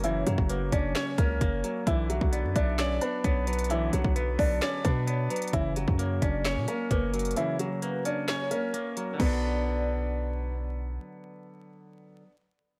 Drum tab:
CC |--------------------------------|--------------------------------|--------------------------------|--------------------------------|
HH |x---x---x---x---x---x---x---x---|x---x---x---x---x---x---x---xxxx|x---x---x---o---x---x---x---xxxx|x---x---x---x---x---x---x---xxxx|
CP |----------------x---------------|----------------x---------------|----------------x---------------|----------------x---------------|
SD |----------------o---------------|----------------o---------------|----------------o---------------|----------------o---------------|
BD |------o-----o-------o---o-------|o-----o-----o-----------o-------|------o-----o-------o-----------|o-----o-----o-----------o-------|

CC |--------------------------------|x-------------------------------|--------------------------------|
HH |x---x---x---x---x---x---x---x---|--------------------------------|--------------------------------|
CP |----------------x---------------|--------------------------------|--------------------------------|
SD |----------------o---------------|--------------------------------|--------------------------------|
BD |--------------------------------|o-------------------------------|--------------------------------|